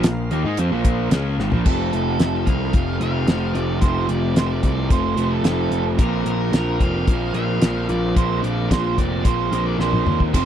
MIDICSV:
0, 0, Header, 1, 7, 480
1, 0, Start_track
1, 0, Tempo, 542005
1, 1467, Time_signature, 4, 2, 24, 8
1, 9255, End_track
2, 0, Start_track
2, 0, Title_t, "Lead electric guitar"
2, 0, Program_c, 0, 29
2, 1462, Note_on_c, 0, 69, 73
2, 1696, Note_off_c, 0, 69, 0
2, 1706, Note_on_c, 0, 69, 67
2, 2177, Note_on_c, 0, 77, 74
2, 2199, Note_off_c, 0, 69, 0
2, 2626, Note_off_c, 0, 77, 0
2, 2668, Note_on_c, 0, 77, 84
2, 3132, Note_on_c, 0, 74, 66
2, 3160, Note_off_c, 0, 77, 0
2, 3360, Note_off_c, 0, 74, 0
2, 3374, Note_on_c, 0, 72, 81
2, 3618, Note_off_c, 0, 72, 0
2, 3622, Note_on_c, 0, 74, 68
2, 3864, Note_off_c, 0, 74, 0
2, 3868, Note_on_c, 0, 72, 77
2, 3943, Note_off_c, 0, 72, 0
2, 3953, Note_on_c, 0, 72, 59
2, 3984, Note_off_c, 0, 72, 0
2, 3989, Note_on_c, 0, 74, 73
2, 4091, Note_off_c, 0, 74, 0
2, 4102, Note_on_c, 0, 74, 78
2, 4326, Note_off_c, 0, 74, 0
2, 4344, Note_on_c, 0, 72, 67
2, 4708, Note_on_c, 0, 69, 66
2, 4715, Note_off_c, 0, 72, 0
2, 4822, Note_off_c, 0, 69, 0
2, 4833, Note_on_c, 0, 69, 68
2, 5164, Note_off_c, 0, 69, 0
2, 5317, Note_on_c, 0, 70, 84
2, 5545, Note_off_c, 0, 70, 0
2, 5556, Note_on_c, 0, 70, 79
2, 6026, Note_on_c, 0, 77, 94
2, 6045, Note_off_c, 0, 70, 0
2, 6497, Note_off_c, 0, 77, 0
2, 6508, Note_on_c, 0, 77, 91
2, 6954, Note_off_c, 0, 77, 0
2, 6990, Note_on_c, 0, 74, 67
2, 7227, Note_off_c, 0, 74, 0
2, 7231, Note_on_c, 0, 72, 91
2, 7454, Note_off_c, 0, 72, 0
2, 7458, Note_on_c, 0, 74, 86
2, 7686, Note_off_c, 0, 74, 0
2, 7711, Note_on_c, 0, 72, 78
2, 7818, Note_off_c, 0, 72, 0
2, 7828, Note_on_c, 0, 72, 71
2, 7953, Note_off_c, 0, 72, 0
2, 7953, Note_on_c, 0, 74, 78
2, 8187, Note_off_c, 0, 74, 0
2, 8191, Note_on_c, 0, 72, 70
2, 8526, Note_off_c, 0, 72, 0
2, 8553, Note_on_c, 0, 74, 71
2, 8674, Note_off_c, 0, 74, 0
2, 8677, Note_on_c, 0, 72, 67
2, 9010, Note_off_c, 0, 72, 0
2, 9157, Note_on_c, 0, 72, 83
2, 9255, Note_off_c, 0, 72, 0
2, 9255, End_track
3, 0, Start_track
3, 0, Title_t, "Tonewheel organ"
3, 0, Program_c, 1, 16
3, 0, Note_on_c, 1, 58, 62
3, 0, Note_on_c, 1, 65, 66
3, 0, Note_on_c, 1, 77, 68
3, 1436, Note_off_c, 1, 65, 0
3, 1436, Note_off_c, 1, 77, 0
3, 1437, Note_off_c, 1, 58, 0
3, 9255, End_track
4, 0, Start_track
4, 0, Title_t, "Overdriven electric guitar"
4, 0, Program_c, 2, 29
4, 40, Note_on_c, 2, 46, 55
4, 42, Note_on_c, 2, 53, 75
4, 227, Note_off_c, 2, 46, 0
4, 229, Note_off_c, 2, 53, 0
4, 278, Note_on_c, 2, 51, 96
4, 285, Note_on_c, 2, 58, 99
4, 387, Note_off_c, 2, 51, 0
4, 391, Note_off_c, 2, 58, 0
4, 401, Note_on_c, 2, 56, 74
4, 408, Note_on_c, 2, 63, 86
4, 508, Note_off_c, 2, 56, 0
4, 512, Note_off_c, 2, 63, 0
4, 516, Note_on_c, 2, 53, 102
4, 523, Note_on_c, 2, 60, 99
4, 625, Note_off_c, 2, 53, 0
4, 629, Note_off_c, 2, 60, 0
4, 632, Note_on_c, 2, 46, 84
4, 641, Note_on_c, 2, 53, 83
4, 644, Note_on_c, 2, 58, 80
4, 982, Note_off_c, 2, 46, 0
4, 987, Note_off_c, 2, 53, 0
4, 988, Note_off_c, 2, 58, 0
4, 992, Note_on_c, 2, 49, 75
4, 998, Note_on_c, 2, 56, 88
4, 1005, Note_on_c, 2, 61, 94
4, 1222, Note_off_c, 2, 49, 0
4, 1225, Note_off_c, 2, 56, 0
4, 1228, Note_off_c, 2, 61, 0
4, 1237, Note_on_c, 2, 44, 81
4, 1241, Note_on_c, 2, 51, 89
4, 1345, Note_off_c, 2, 44, 0
4, 1347, Note_off_c, 2, 51, 0
4, 1356, Note_on_c, 2, 46, 75
4, 1359, Note_on_c, 2, 53, 86
4, 1464, Note_off_c, 2, 46, 0
4, 1466, Note_off_c, 2, 53, 0
4, 1469, Note_on_c, 2, 41, 80
4, 1476, Note_on_c, 2, 48, 84
4, 1483, Note_on_c, 2, 53, 79
4, 1488, Note_on_c, 2, 57, 81
4, 1496, Note_on_c, 2, 60, 87
4, 1942, Note_off_c, 2, 48, 0
4, 1953, Note_on_c, 2, 48, 69
4, 1958, Note_off_c, 2, 53, 0
4, 1961, Note_on_c, 2, 53, 78
4, 1966, Note_off_c, 2, 57, 0
4, 1969, Note_on_c, 2, 57, 70
4, 1973, Note_off_c, 2, 60, 0
4, 1977, Note_on_c, 2, 60, 75
4, 2183, Note_off_c, 2, 60, 0
4, 2187, Note_on_c, 2, 60, 70
4, 2198, Note_off_c, 2, 57, 0
4, 2202, Note_on_c, 2, 57, 63
4, 2211, Note_off_c, 2, 53, 0
4, 2215, Note_on_c, 2, 53, 52
4, 2413, Note_off_c, 2, 48, 0
4, 2424, Note_on_c, 2, 48, 67
4, 2432, Note_off_c, 2, 53, 0
4, 2435, Note_on_c, 2, 53, 79
4, 2436, Note_off_c, 2, 57, 0
4, 2446, Note_on_c, 2, 57, 83
4, 2449, Note_off_c, 2, 60, 0
4, 2453, Note_on_c, 2, 60, 77
4, 2666, Note_off_c, 2, 60, 0
4, 2670, Note_on_c, 2, 60, 74
4, 2672, Note_off_c, 2, 57, 0
4, 2683, Note_on_c, 2, 57, 65
4, 2692, Note_off_c, 2, 53, 0
4, 2695, Note_on_c, 2, 53, 50
4, 2900, Note_off_c, 2, 41, 0
4, 2900, Note_off_c, 2, 48, 0
4, 2903, Note_on_c, 2, 41, 79
4, 2911, Note_on_c, 2, 48, 78
4, 2913, Note_off_c, 2, 57, 0
4, 2914, Note_off_c, 2, 53, 0
4, 2917, Note_on_c, 2, 53, 74
4, 2923, Note_on_c, 2, 57, 70
4, 2925, Note_off_c, 2, 60, 0
4, 2929, Note_on_c, 2, 60, 77
4, 3369, Note_off_c, 2, 41, 0
4, 3374, Note_off_c, 2, 48, 0
4, 3380, Note_on_c, 2, 41, 77
4, 3385, Note_on_c, 2, 48, 77
4, 3389, Note_off_c, 2, 57, 0
4, 3390, Note_off_c, 2, 53, 0
4, 3393, Note_on_c, 2, 53, 88
4, 3398, Note_off_c, 2, 60, 0
4, 3400, Note_on_c, 2, 57, 89
4, 3402, Note_on_c, 2, 60, 92
4, 3844, Note_off_c, 2, 48, 0
4, 3855, Note_on_c, 2, 48, 67
4, 3859, Note_off_c, 2, 53, 0
4, 3860, Note_off_c, 2, 57, 0
4, 3862, Note_on_c, 2, 53, 74
4, 3871, Note_on_c, 2, 57, 78
4, 3877, Note_off_c, 2, 60, 0
4, 3880, Note_on_c, 2, 60, 74
4, 4089, Note_off_c, 2, 60, 0
4, 4093, Note_on_c, 2, 60, 67
4, 4099, Note_off_c, 2, 57, 0
4, 4102, Note_off_c, 2, 41, 0
4, 4110, Note_on_c, 2, 57, 66
4, 4117, Note_off_c, 2, 53, 0
4, 4121, Note_on_c, 2, 53, 54
4, 4319, Note_off_c, 2, 48, 0
4, 4330, Note_on_c, 2, 48, 73
4, 4335, Note_off_c, 2, 53, 0
4, 4337, Note_off_c, 2, 57, 0
4, 4339, Note_on_c, 2, 53, 76
4, 4348, Note_on_c, 2, 57, 83
4, 4351, Note_off_c, 2, 60, 0
4, 4354, Note_on_c, 2, 60, 75
4, 4566, Note_off_c, 2, 60, 0
4, 4569, Note_on_c, 2, 60, 68
4, 4576, Note_off_c, 2, 57, 0
4, 4587, Note_on_c, 2, 57, 62
4, 4595, Note_off_c, 2, 53, 0
4, 4599, Note_on_c, 2, 53, 57
4, 4802, Note_off_c, 2, 48, 0
4, 4806, Note_on_c, 2, 41, 78
4, 4813, Note_on_c, 2, 48, 77
4, 4815, Note_off_c, 2, 53, 0
4, 4817, Note_off_c, 2, 57, 0
4, 4818, Note_on_c, 2, 53, 78
4, 4825, Note_off_c, 2, 60, 0
4, 4828, Note_on_c, 2, 57, 81
4, 4828, Note_on_c, 2, 60, 81
4, 5281, Note_off_c, 2, 41, 0
4, 5284, Note_off_c, 2, 48, 0
4, 5289, Note_on_c, 2, 46, 82
4, 5292, Note_off_c, 2, 57, 0
4, 5294, Note_off_c, 2, 53, 0
4, 5297, Note_on_c, 2, 53, 75
4, 5307, Note_on_c, 2, 58, 79
4, 5310, Note_off_c, 2, 60, 0
4, 5314, Note_on_c, 2, 60, 94
4, 5764, Note_off_c, 2, 46, 0
4, 5768, Note_on_c, 2, 46, 71
4, 5774, Note_off_c, 2, 53, 0
4, 5777, Note_on_c, 2, 53, 71
4, 5781, Note_off_c, 2, 58, 0
4, 5785, Note_on_c, 2, 58, 65
4, 5790, Note_off_c, 2, 60, 0
4, 5794, Note_on_c, 2, 60, 71
4, 6011, Note_off_c, 2, 60, 0
4, 6014, Note_on_c, 2, 60, 74
4, 6025, Note_off_c, 2, 58, 0
4, 6029, Note_on_c, 2, 58, 57
4, 6035, Note_off_c, 2, 53, 0
4, 6038, Note_on_c, 2, 53, 56
4, 6247, Note_off_c, 2, 46, 0
4, 6250, Note_on_c, 2, 46, 76
4, 6256, Note_off_c, 2, 58, 0
4, 6260, Note_off_c, 2, 53, 0
4, 6264, Note_on_c, 2, 53, 71
4, 6267, Note_on_c, 2, 58, 79
4, 6273, Note_off_c, 2, 60, 0
4, 6277, Note_on_c, 2, 60, 85
4, 6489, Note_off_c, 2, 60, 0
4, 6493, Note_on_c, 2, 60, 68
4, 6496, Note_off_c, 2, 58, 0
4, 6507, Note_on_c, 2, 58, 63
4, 6517, Note_off_c, 2, 53, 0
4, 6520, Note_on_c, 2, 53, 59
4, 6723, Note_off_c, 2, 46, 0
4, 6734, Note_on_c, 2, 46, 80
4, 6740, Note_off_c, 2, 53, 0
4, 6741, Note_off_c, 2, 58, 0
4, 6744, Note_on_c, 2, 53, 79
4, 6752, Note_on_c, 2, 58, 85
4, 6754, Note_off_c, 2, 60, 0
4, 6758, Note_on_c, 2, 60, 91
4, 7205, Note_off_c, 2, 46, 0
4, 7215, Note_on_c, 2, 46, 75
4, 7223, Note_off_c, 2, 53, 0
4, 7224, Note_off_c, 2, 58, 0
4, 7226, Note_on_c, 2, 53, 93
4, 7234, Note_on_c, 2, 58, 90
4, 7239, Note_off_c, 2, 60, 0
4, 7243, Note_on_c, 2, 60, 90
4, 7687, Note_off_c, 2, 46, 0
4, 7698, Note_on_c, 2, 46, 62
4, 7702, Note_off_c, 2, 53, 0
4, 7703, Note_off_c, 2, 58, 0
4, 7706, Note_on_c, 2, 53, 77
4, 7714, Note_on_c, 2, 58, 77
4, 7718, Note_off_c, 2, 60, 0
4, 7722, Note_on_c, 2, 60, 76
4, 7933, Note_off_c, 2, 60, 0
4, 7936, Note_on_c, 2, 60, 65
4, 7939, Note_off_c, 2, 58, 0
4, 7949, Note_on_c, 2, 58, 55
4, 7957, Note_off_c, 2, 53, 0
4, 7960, Note_on_c, 2, 53, 54
4, 8171, Note_off_c, 2, 46, 0
4, 8181, Note_on_c, 2, 46, 74
4, 8186, Note_off_c, 2, 53, 0
4, 8187, Note_off_c, 2, 58, 0
4, 8190, Note_on_c, 2, 53, 78
4, 8198, Note_on_c, 2, 58, 68
4, 8206, Note_off_c, 2, 60, 0
4, 8209, Note_on_c, 2, 60, 76
4, 8419, Note_off_c, 2, 60, 0
4, 8422, Note_on_c, 2, 60, 69
4, 8428, Note_off_c, 2, 58, 0
4, 8438, Note_on_c, 2, 58, 61
4, 8444, Note_off_c, 2, 53, 0
4, 8448, Note_on_c, 2, 53, 56
4, 8660, Note_off_c, 2, 46, 0
4, 8670, Note_on_c, 2, 46, 71
4, 8679, Note_off_c, 2, 58, 0
4, 8680, Note_off_c, 2, 53, 0
4, 8683, Note_on_c, 2, 53, 83
4, 8689, Note_on_c, 2, 58, 71
4, 8693, Note_off_c, 2, 60, 0
4, 8696, Note_on_c, 2, 60, 79
4, 9137, Note_off_c, 2, 46, 0
4, 9147, Note_off_c, 2, 58, 0
4, 9148, Note_on_c, 2, 41, 85
4, 9155, Note_on_c, 2, 48, 81
4, 9156, Note_off_c, 2, 53, 0
4, 9160, Note_on_c, 2, 53, 84
4, 9165, Note_on_c, 2, 57, 90
4, 9169, Note_off_c, 2, 60, 0
4, 9172, Note_on_c, 2, 60, 82
4, 9255, Note_off_c, 2, 41, 0
4, 9255, Note_off_c, 2, 48, 0
4, 9255, Note_off_c, 2, 53, 0
4, 9255, Note_off_c, 2, 57, 0
4, 9255, Note_off_c, 2, 60, 0
4, 9255, End_track
5, 0, Start_track
5, 0, Title_t, "Overdriven electric guitar"
5, 0, Program_c, 3, 29
5, 2656, Note_on_c, 3, 53, 63
5, 2674, Note_on_c, 3, 48, 59
5, 2687, Note_on_c, 3, 41, 61
5, 2885, Note_off_c, 3, 41, 0
5, 2894, Note_off_c, 3, 48, 0
5, 2925, Note_off_c, 3, 53, 0
5, 4589, Note_on_c, 3, 48, 60
5, 4602, Note_on_c, 3, 41, 59
5, 4811, Note_off_c, 3, 41, 0
5, 4813, Note_off_c, 3, 48, 0
5, 4854, Note_on_c, 3, 53, 64
5, 5303, Note_off_c, 3, 53, 0
5, 6526, Note_on_c, 3, 46, 50
5, 6726, Note_off_c, 3, 46, 0
5, 8462, Note_on_c, 3, 46, 53
5, 8653, Note_off_c, 3, 46, 0
5, 9255, End_track
6, 0, Start_track
6, 0, Title_t, "Picked electric bass"
6, 0, Program_c, 4, 34
6, 37, Note_on_c, 4, 34, 69
6, 257, Note_off_c, 4, 34, 0
6, 279, Note_on_c, 4, 39, 80
6, 387, Note_off_c, 4, 39, 0
6, 396, Note_on_c, 4, 44, 89
6, 505, Note_off_c, 4, 44, 0
6, 518, Note_on_c, 4, 41, 95
6, 625, Note_off_c, 4, 41, 0
6, 629, Note_on_c, 4, 34, 78
6, 963, Note_off_c, 4, 34, 0
6, 984, Note_on_c, 4, 37, 89
6, 1208, Note_off_c, 4, 37, 0
6, 1227, Note_on_c, 4, 32, 86
6, 1338, Note_off_c, 4, 32, 0
6, 1350, Note_on_c, 4, 34, 86
6, 1460, Note_off_c, 4, 34, 0
6, 1471, Note_on_c, 4, 29, 90
6, 1684, Note_off_c, 4, 29, 0
6, 1712, Note_on_c, 4, 29, 78
6, 1924, Note_off_c, 4, 29, 0
6, 1946, Note_on_c, 4, 29, 73
6, 2161, Note_off_c, 4, 29, 0
6, 2190, Note_on_c, 4, 36, 68
6, 2403, Note_off_c, 4, 36, 0
6, 2429, Note_on_c, 4, 29, 87
6, 2642, Note_off_c, 4, 29, 0
6, 2664, Note_on_c, 4, 29, 74
6, 2880, Note_off_c, 4, 29, 0
6, 2902, Note_on_c, 4, 29, 75
6, 3119, Note_off_c, 4, 29, 0
6, 3143, Note_on_c, 4, 29, 82
6, 3359, Note_off_c, 4, 29, 0
6, 3387, Note_on_c, 4, 29, 83
6, 3601, Note_off_c, 4, 29, 0
6, 3624, Note_on_c, 4, 29, 79
6, 3840, Note_off_c, 4, 29, 0
6, 3862, Note_on_c, 4, 29, 79
6, 4078, Note_off_c, 4, 29, 0
6, 4106, Note_on_c, 4, 36, 75
6, 4321, Note_off_c, 4, 36, 0
6, 4342, Note_on_c, 4, 29, 80
6, 4559, Note_off_c, 4, 29, 0
6, 4578, Note_on_c, 4, 29, 77
6, 4797, Note_off_c, 4, 29, 0
6, 4808, Note_on_c, 4, 29, 77
6, 5032, Note_off_c, 4, 29, 0
6, 5056, Note_on_c, 4, 29, 82
6, 5276, Note_off_c, 4, 29, 0
6, 5305, Note_on_c, 4, 34, 84
6, 5521, Note_off_c, 4, 34, 0
6, 5539, Note_on_c, 4, 34, 77
6, 5758, Note_off_c, 4, 34, 0
6, 5779, Note_on_c, 4, 34, 74
6, 5998, Note_off_c, 4, 34, 0
6, 6025, Note_on_c, 4, 29, 74
6, 6241, Note_off_c, 4, 29, 0
6, 6266, Note_on_c, 4, 34, 89
6, 6482, Note_off_c, 4, 34, 0
6, 6498, Note_on_c, 4, 34, 84
6, 6718, Note_off_c, 4, 34, 0
6, 6747, Note_on_c, 4, 34, 75
6, 6963, Note_off_c, 4, 34, 0
6, 6989, Note_on_c, 4, 34, 77
6, 7205, Note_off_c, 4, 34, 0
6, 7233, Note_on_c, 4, 34, 82
6, 7447, Note_off_c, 4, 34, 0
6, 7470, Note_on_c, 4, 34, 76
6, 7685, Note_off_c, 4, 34, 0
6, 7715, Note_on_c, 4, 34, 75
6, 7929, Note_off_c, 4, 34, 0
6, 7950, Note_on_c, 4, 29, 68
6, 8166, Note_off_c, 4, 29, 0
6, 8193, Note_on_c, 4, 34, 82
6, 8408, Note_off_c, 4, 34, 0
6, 8430, Note_on_c, 4, 34, 77
6, 8647, Note_off_c, 4, 34, 0
6, 8664, Note_on_c, 4, 34, 76
6, 8883, Note_off_c, 4, 34, 0
6, 8910, Note_on_c, 4, 39, 79
6, 9127, Note_off_c, 4, 39, 0
6, 9158, Note_on_c, 4, 29, 88
6, 9255, Note_off_c, 4, 29, 0
6, 9255, End_track
7, 0, Start_track
7, 0, Title_t, "Drums"
7, 31, Note_on_c, 9, 42, 99
7, 38, Note_on_c, 9, 38, 113
7, 119, Note_off_c, 9, 42, 0
7, 126, Note_off_c, 9, 38, 0
7, 273, Note_on_c, 9, 42, 53
7, 362, Note_off_c, 9, 42, 0
7, 508, Note_on_c, 9, 42, 88
7, 596, Note_off_c, 9, 42, 0
7, 749, Note_on_c, 9, 42, 63
7, 750, Note_on_c, 9, 36, 78
7, 838, Note_off_c, 9, 36, 0
7, 838, Note_off_c, 9, 42, 0
7, 985, Note_on_c, 9, 42, 92
7, 993, Note_on_c, 9, 38, 103
7, 1074, Note_off_c, 9, 42, 0
7, 1081, Note_off_c, 9, 38, 0
7, 1237, Note_on_c, 9, 38, 53
7, 1325, Note_off_c, 9, 38, 0
7, 1344, Note_on_c, 9, 43, 79
7, 1432, Note_off_c, 9, 43, 0
7, 1467, Note_on_c, 9, 49, 83
7, 1469, Note_on_c, 9, 36, 105
7, 1555, Note_off_c, 9, 49, 0
7, 1557, Note_off_c, 9, 36, 0
7, 1710, Note_on_c, 9, 42, 52
7, 1799, Note_off_c, 9, 42, 0
7, 1944, Note_on_c, 9, 42, 72
7, 1951, Note_on_c, 9, 38, 100
7, 2033, Note_off_c, 9, 42, 0
7, 2040, Note_off_c, 9, 38, 0
7, 2185, Note_on_c, 9, 42, 46
7, 2187, Note_on_c, 9, 36, 70
7, 2274, Note_off_c, 9, 42, 0
7, 2276, Note_off_c, 9, 36, 0
7, 2421, Note_on_c, 9, 42, 71
7, 2426, Note_on_c, 9, 36, 98
7, 2510, Note_off_c, 9, 42, 0
7, 2515, Note_off_c, 9, 36, 0
7, 2664, Note_on_c, 9, 42, 52
7, 2753, Note_off_c, 9, 42, 0
7, 2900, Note_on_c, 9, 42, 68
7, 2907, Note_on_c, 9, 38, 103
7, 2989, Note_off_c, 9, 42, 0
7, 2996, Note_off_c, 9, 38, 0
7, 3145, Note_on_c, 9, 42, 47
7, 3233, Note_off_c, 9, 42, 0
7, 3380, Note_on_c, 9, 42, 77
7, 3384, Note_on_c, 9, 36, 92
7, 3468, Note_off_c, 9, 42, 0
7, 3473, Note_off_c, 9, 36, 0
7, 3621, Note_on_c, 9, 42, 57
7, 3710, Note_off_c, 9, 42, 0
7, 3863, Note_on_c, 9, 42, 83
7, 3870, Note_on_c, 9, 38, 103
7, 3951, Note_off_c, 9, 42, 0
7, 3958, Note_off_c, 9, 38, 0
7, 4101, Note_on_c, 9, 42, 51
7, 4103, Note_on_c, 9, 36, 69
7, 4190, Note_off_c, 9, 42, 0
7, 4192, Note_off_c, 9, 36, 0
7, 4343, Note_on_c, 9, 36, 101
7, 4343, Note_on_c, 9, 42, 67
7, 4431, Note_off_c, 9, 36, 0
7, 4432, Note_off_c, 9, 42, 0
7, 4583, Note_on_c, 9, 42, 58
7, 4672, Note_off_c, 9, 42, 0
7, 4820, Note_on_c, 9, 42, 73
7, 4827, Note_on_c, 9, 38, 98
7, 4909, Note_off_c, 9, 42, 0
7, 4916, Note_off_c, 9, 38, 0
7, 5063, Note_on_c, 9, 42, 52
7, 5151, Note_off_c, 9, 42, 0
7, 5302, Note_on_c, 9, 42, 74
7, 5303, Note_on_c, 9, 36, 101
7, 5391, Note_off_c, 9, 42, 0
7, 5392, Note_off_c, 9, 36, 0
7, 5544, Note_on_c, 9, 42, 55
7, 5632, Note_off_c, 9, 42, 0
7, 5785, Note_on_c, 9, 42, 72
7, 5792, Note_on_c, 9, 38, 100
7, 5873, Note_off_c, 9, 42, 0
7, 5880, Note_off_c, 9, 38, 0
7, 6025, Note_on_c, 9, 36, 71
7, 6026, Note_on_c, 9, 42, 46
7, 6114, Note_off_c, 9, 36, 0
7, 6115, Note_off_c, 9, 42, 0
7, 6266, Note_on_c, 9, 36, 99
7, 6266, Note_on_c, 9, 42, 74
7, 6354, Note_off_c, 9, 42, 0
7, 6355, Note_off_c, 9, 36, 0
7, 6503, Note_on_c, 9, 42, 48
7, 6591, Note_off_c, 9, 42, 0
7, 6745, Note_on_c, 9, 42, 76
7, 6752, Note_on_c, 9, 38, 102
7, 6833, Note_off_c, 9, 42, 0
7, 6840, Note_off_c, 9, 38, 0
7, 6987, Note_on_c, 9, 42, 52
7, 7076, Note_off_c, 9, 42, 0
7, 7230, Note_on_c, 9, 36, 93
7, 7232, Note_on_c, 9, 42, 80
7, 7318, Note_off_c, 9, 36, 0
7, 7321, Note_off_c, 9, 42, 0
7, 7475, Note_on_c, 9, 42, 54
7, 7564, Note_off_c, 9, 42, 0
7, 7712, Note_on_c, 9, 36, 66
7, 7715, Note_on_c, 9, 42, 80
7, 7722, Note_on_c, 9, 38, 108
7, 7801, Note_off_c, 9, 36, 0
7, 7803, Note_off_c, 9, 42, 0
7, 7810, Note_off_c, 9, 38, 0
7, 7952, Note_on_c, 9, 36, 63
7, 7956, Note_on_c, 9, 42, 53
7, 8041, Note_off_c, 9, 36, 0
7, 8044, Note_off_c, 9, 42, 0
7, 8190, Note_on_c, 9, 42, 76
7, 8192, Note_on_c, 9, 36, 91
7, 8279, Note_off_c, 9, 42, 0
7, 8280, Note_off_c, 9, 36, 0
7, 8437, Note_on_c, 9, 42, 60
7, 8526, Note_off_c, 9, 42, 0
7, 8678, Note_on_c, 9, 38, 48
7, 8767, Note_off_c, 9, 38, 0
7, 8794, Note_on_c, 9, 47, 52
7, 8882, Note_off_c, 9, 47, 0
7, 8914, Note_on_c, 9, 45, 73
7, 9003, Note_off_c, 9, 45, 0
7, 9035, Note_on_c, 9, 36, 70
7, 9124, Note_off_c, 9, 36, 0
7, 9157, Note_on_c, 9, 36, 89
7, 9159, Note_on_c, 9, 42, 70
7, 9159, Note_on_c, 9, 49, 76
7, 9246, Note_off_c, 9, 36, 0
7, 9248, Note_off_c, 9, 42, 0
7, 9248, Note_off_c, 9, 49, 0
7, 9255, End_track
0, 0, End_of_file